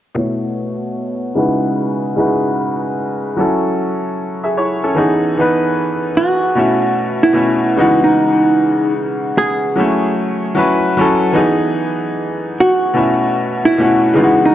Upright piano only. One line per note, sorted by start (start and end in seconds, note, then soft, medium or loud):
0.14 1.36 B2 medium
0.14 1.36 A3 medium
0.14 1.35 E4 medium
0.14 1.38 C#5 medium
1.35 2.10 C#3 medium
1.35 2.11 G#3 medium
1.35 2.11 D#4 medium
1.35 2.11 E4 medium
1.35 2.12 F#4 medium
1.35 2.12 B4 medium
2.16 3.28 C#3 medium
2.16 3.28 G#3 medium
2.16 3.29 D#4 medium
2.16 3.29 E4 medium
2.16 3.29 F#4 medium
2.16 3.30 B4 medium
3.37 4.85 F#3 medium
3.37 3.77 C#4 medium
3.37 3.78 E4 medium
3.37 3.78 A4 medium
4.44 4.57 G#4 medium
4.44 4.56 E5 medium
4.57 4.82 E4 medium
4.57 4.82 C#5 medium
4.83 5.22 C#4 soft
4.83 5.21 A4 medium
4.95 5.33 E3 medium
4.95 5.34 B3 medium
4.95 5.34 D#4 medium
4.95 5.35 G#4 medium
5.37 6.49 E3 medium
5.37 6.49 B3 medium
5.37 6.50 D#4 medium
5.37 6.50 B4 medium
6.55 7.30 B2 medium
6.55 7.31 A3 medium
6.55 7.32 C#4 medium
6.55 7.32 E4 medium
7.33 7.72 B2 medium
7.33 7.73 A3 medium
7.33 7.73 C#4 medium
7.33 7.74 E4 medium
7.76 9.25 C#3 medium
7.76 9.27 E3 medium
7.76 9.26 G#3 medium
7.76 9.26 B3 medium
7.76 9.26 D#4 medium
7.76 9.27 F#4 medium
9.76 10.51 F#3 medium
9.76 10.52 A3 medium
9.76 10.51 C#4 medium
9.76 10.52 E4 medium
10.55 10.93 F#3 medium
10.55 10.94 C#4 medium
10.55 10.94 E4 medium
10.55 10.95 B4 medium
10.97 11.37 F#3 medium
10.97 11.37 C#4 medium
10.97 11.38 E4 medium
10.97 11.39 A4 medium
11.32 12.83 E3 medium
11.32 12.84 B3 medium
11.32 12.84 D#4 medium
11.32 12.85 G#4 medium
12.93 13.70 B2 medium
12.93 13.70 A3 medium
12.93 13.71 C#4 medium
12.93 13.71 E4 medium
13.78 14.14 B2 medium
13.78 14.15 A3 medium
13.78 14.16 C#4 medium
13.78 14.16 F#4 medium
14.13 14.55 C#3 medium
14.13 14.55 E3 medium
14.13 14.55 G#3 medium
14.13 14.55 B3 medium
14.13 14.55 D#4 medium
14.13 14.25 F4 medium
14.23 14.55 F#4 medium